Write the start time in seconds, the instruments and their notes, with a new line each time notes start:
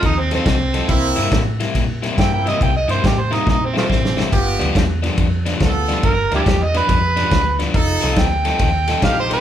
Already playing: overdriven electric guitar F3 C4 D#4 A4
0.03 fingered electric bass D#2, harmonica D#4, kick, ride
0.19 harmonica C4
0.31 overdriven electric guitar F3 C4 D#4 A4, harmonica C4, snare, ride
0.46 fingered electric bass C2, kick, snare, ride
0.74 overdriven electric guitar F3 C4 D#4 A4, snare, ride
0.88 fingered electric bass C2, horn section A#3 C4 E4, kick, ride
1.16 fingered electric bass G2, overdriven electric guitar C3 G3 A#3 E4, snare, ride
1.32 fingered electric bass A2, kick, snare, ride
1.60 overdriven electric guitar C3 G3 A#3 E4, snare, ride
1.75 fingered electric bass A#2, kick, snare, ride
2.03 overdriven electric guitar C3 G3 A#3 E4, snare, ride
2.17 fingered electric bass G2, horn section A#3 C4 E4, harmonica G5, kick, snare, ride
2.34 harmonica G5
2.46 overdriven electric guitar C3 G3 A#3 E4, harmonica D#5, snare, ride
2.61 fingered electric bass C2, harmonica G5, kick, ride
2.77 harmonica D#5
2.88 fingered electric bass G2, overdriven electric guitar C3 G3 A#3 E4, harmonica C5, snare, ride
3.04 fingered electric bass A2, harmonica G4, kick, snare, ride
3.20 harmonica C5
3.31 overdriven electric guitar C3 G3 A#3 E4, snare, ride
3.35 harmonica D#4
3.47 fingered electric bass A#2, harmonica D#4, kick, snare
3.65 harmonica C4
3.74 overdriven electric guitar C3 G3 A#3 E4, snare
3.78 harmonica F3 A3 C4
3.89 fingered electric bass A1, kick, snare
4.05 snare
4.17 overdriven electric guitar C3 G3 A#3 E4, snare
4.31 fingered electric bass G1, horn section B3 F4 G4, kick, ride
4.59 fingered electric bass D2, overdriven electric guitar G2 F3 B3 D4, snare, ride
4.75 fingered electric bass E2, kick, snare, ride
5.02 overdriven electric guitar G2 F3 B3 D4, snare, ride
5.18 fingered electric bass F2, kick, ride
5.46 overdriven electric guitar G2 F3 B3 D4, snare, ride
5.60 fingered electric bass D2, horn section B3 F4 A4, kick, snare, ride
5.88 overdriven electric guitar G2 F3 B3 D4, snare, ride
6.03 fingered electric bass G1, harmonica A#4, kick, ride
6.32 fingered electric bass D2, overdriven electric guitar G2 F3 B3 D4, harmonica D4 E4 G4, snare, ride
6.46 fingered electric bass E2, kick, snare, ride
6.64 harmonica D#5
6.74 overdriven electric guitar G2 F3 B3 D4, harmonica B4, snare, ride
6.89 fingered electric bass F2, kick, snare, ride
7.16 overdriven electric guitar G2 F3 B3 D4, snare, ride
7.31 fingered electric bass D2, kick, snare, ride
7.59 overdriven electric guitar G2 F3 B3 D4, snare, ride
7.73 fingered electric bass F1, horn section D#4 F4 A4, kick, ride
8.01 fingered electric bass C2, overdriven electric guitar F3 C4 D#4 A4, snare, ride
8.16 fingered electric bass D2, harmonica G5, kick, snare, ride
8.45 overdriven electric guitar F3 C4 D#4 A4, snare, ride
8.59 fingered electric bass D#2, kick, ride
8.87 overdriven electric guitar F3 C4 D#4 A4, snare, ride
9.01 fingered electric bass A#1, horn section D#4 F4 G4, harmonica F5, kick, snare, ride
9.20 harmonica C5
9.30 overdriven electric guitar F3 C4 D#4 A4, harmonica C5, snare, ride